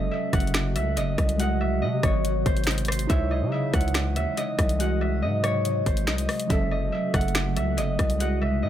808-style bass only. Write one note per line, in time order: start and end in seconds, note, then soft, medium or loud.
0.00 0.10 F#1 loud
0.33 0.77 F#1 loud
0.76 0.98 C#2 loud
0.97 1.17 F#1 loud
1.18 1.84 C2 loud
1.82 2.02 C3 medium
2.03 2.44 G#1 loud
2.46 3.07 G#1 loud
3.10 3.43 C#2 loud
3.42 3.72 C#3 loud
3.74 4.18 C#2 loud
4.16 4.26 D#2 loud
4.59 5.24 C2 loud
5.23 5.83 G#2 loud
5.86 6.09 G#1 loud
6.08 6.28 C2 loud
6.50 6.91 F#1 loud
7.14 7.58 F#1 loud
7.57 7.79 C#2 loud
7.78 7.98 F#1 loud
7.99 8.64 C2 loud
8.63 8.69 C3 loud